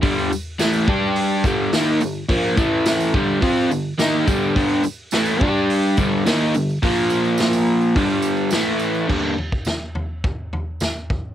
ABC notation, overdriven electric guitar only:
X:1
M:4/4
L:1/8
Q:1/4=106
K:Gm
V:1 name="Overdriven electric guitar" clef=bass
[G,,D,G,] z [A,,=E,A,] [G,DG]2 [G,,D,G,] [_E,B,E] [G,,D,] | [B,,F,B,] [A,,=E,A,]2 [G,,D,G,] [F,CF] [G,,D,] [_E,B,E] [G,,D,G,] | [G,,D,G,] z [A,,=E,A,] [G,DG]2 [G,,D,G,] [_E,B,E] [G,,D,] | [B,,F,B,]4 [G,,D,G,]2 [A,,=E,A,]2 |
[G,,D,G,B,D] z6 z |]